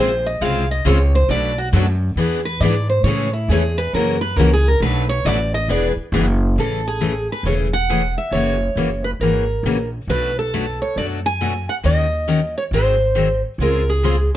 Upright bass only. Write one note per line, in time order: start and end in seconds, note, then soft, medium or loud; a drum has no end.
0.00 0.40 A#1 medium
0.41 0.84 C2 medium
0.85 1.28 C#2 medium
1.29 1.72 B1 medium
1.73 2.15 F#2 loud
2.16 2.59 E2 medium
2.60 3.03 G#2 medium
3.03 3.47 A2 medium
3.48 3.91 E2 medium
3.93 4.36 F#2 medium
4.36 4.79 C#2 medium
4.80 5.23 B1 medium
5.25 5.68 A1 medium
5.68 5.95 E1 medium
5.96 muted upright bass stroke soft
6.12 6.55 F#1 loud
6.56 7.26 A1 medium
7.43 8.14 E1 medium
8.31 8.67 F#1 medium
8.75 9.13 F#1 medium
9.20 9.57 G#1 medium
9.63 10.01 A#1 medium
10.07 10.78 B1 medium
10.96 11.66 F#2 medium
11.84 12.54 D#2 medium
12.71 13.41 G#1 medium
13.58 14.29 C#2 medium